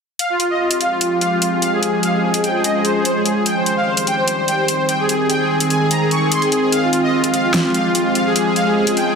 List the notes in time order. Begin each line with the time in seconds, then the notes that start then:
0.19 F3 G#3 C4 G4 F5, closed hi-hat
0.30 F4
0.40 F4, closed hi-hat
0.50 D#5
0.60 F4
0.71 F4, closed hi-hat
0.81 F5, closed hi-hat
0.91 F4
1.01 F4, closed hi-hat
1.11 F4
1.21 F5, closed hi-hat
1.32 F4
1.42 F4, closed hi-hat
1.52 F4
1.62 F5, closed hi-hat
1.73 G#4
1.83 C#4 G#4, closed hi-hat
1.93 G#4
2.03 F5, closed hi-hat
2.14 G#4
2.23 G#4
2.34 G#4, closed hi-hat
2.44 G5, closed hi-hat
2.54 G#4
2.64 D#5, closed hi-hat
2.75 G#4
2.85 C5, closed hi-hat
2.95 G#4
3.05 C5, closed hi-hat
3.15 G#4
3.25 G#4, closed hi-hat
3.36 G#4
3.46 D#3 G3 C4 G4 G5, closed hi-hat
3.56 C5
3.66 C5, closed hi-hat
3.77 F5
3.87 C5
3.97 C5, closed hi-hat
4.07 G5, closed hi-hat
4.18 C5
4.28 C5, closed hi-hat
4.38 C5
4.48 G5, closed hi-hat
4.58 C5
4.68 C5, closed hi-hat
4.79 C5
4.89 G5, closed hi-hat
4.99 G#4
5.09 D#3 G#3 G#4, closed hi-hat
5.20 G#4
5.29 G5, closed hi-hat
5.40 G#4
5.50 G#4
5.60 G#4, closed hi-hat
5.70 G#5, closed hi-hat
5.81 G#4
5.91 A#5, closed hi-hat
6.01 G#4
6.11 C#6, closed hi-hat
6.22 G#4
6.31 C6, closed hi-hat
6.42 G#4, closed hi-hat
6.52 G#4, closed hi-hat
6.62 G#4
6.72 F3 G#3 G4 F5, closed hi-hat
6.83 F4
6.93 F4, closed hi-hat
7.03 D#5
7.13 F4
7.24 F4, closed hi-hat
7.34 F5, closed hi-hat
7.44 F4
7.54 F4, snare, closed hi-hat
7.64 F4
7.74 F5, closed hi-hat
7.85 F4
7.95 F4, closed hi-hat
8.05 F4
8.15 F5, closed hi-hat
8.26 G#4
8.36 C#4 G#4, closed hi-hat
8.46 G#4
8.56 F5, closed hi-hat
8.66 G#4
8.76 G#4
8.87 G#4, closed hi-hat
8.97 G5, closed hi-hat
9.07 G#4